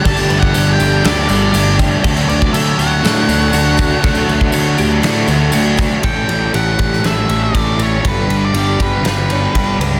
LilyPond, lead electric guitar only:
\new Staff \with { instrumentName = "Lead electric guitar" } { \time 4/4 \key a \mixolydian \tempo 4 = 120 \tuplet 3/2 { a''4 fis''8~ fis''8 g''4 } d''4. r8 | r8 d''8 e''8 fis''2~ fis''8~ | fis''2. r4 | g''4 fis''4 e''8. d''8. cis''8 |
b'8. d''8. b'8 b'4. r8 | }